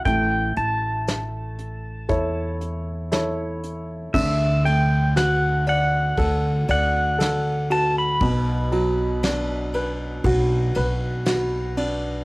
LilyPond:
<<
  \new Staff \with { instrumentName = "Pedal steel guitar" } { \time 4/4 \key d \major \tempo 4 = 59 g''8 a''2 r4. | e''8 g''8 fis''8 fis''4 fis''4 a''16 b''16~ | b''4.~ b''16 r2 r16 | }
  \new Staff \with { instrumentName = "Grand piano" } { \time 4/4 \key d \major a2 <e' a' cis''>4 <e' a' cis''>4 | d8 a8 fis'8 d''8 a'8 d''8 a'8 fis'8 | b,8 fis8 d'8 b'8 fis'8 b'8 fis'8 d'8 | }
  \new Staff \with { instrumentName = "Upright bass" } { \clef bass \time 4/4 \key d \major a,,8 a,,4. e,2 | d,2 d,8 d,4. | b,,2 b,,8 b,,4. | }
  \new DrumStaff \with { instrumentName = "Drums" } \drummode { \time 4/4 <hh bd>8 hh8 <hh sn>8 hh8 <hh bd>8 hh8 <hh sn>8 hh8 | <cymc bd>8 cymr8 <cymr sn>8 cymr8 <bd cymr>8 cymr8 <cymr sn>8 cymr8 | <bd cymr>8 cymr8 <cymr sn>8 cymr8 <bd cymr>8 cymr8 <cymr sn>8 cymr8 | }
>>